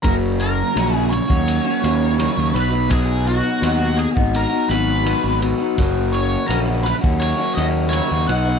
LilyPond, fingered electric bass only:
\new Staff \with { instrumentName = "Fingered electric bass" } { \clef bass \time 4/4 \key fis \mixolydian \tempo 4 = 84 fis,,4 ais,,8. dis,8 r16 dis,8. dis,16 b,,8~ | b,,4 dis,8. gis,,8 r16 gis,,8. gis,,8 r16 | fis,,4 ais,,8. dis,8 r16 dis,8. dis,16 b,,8 | }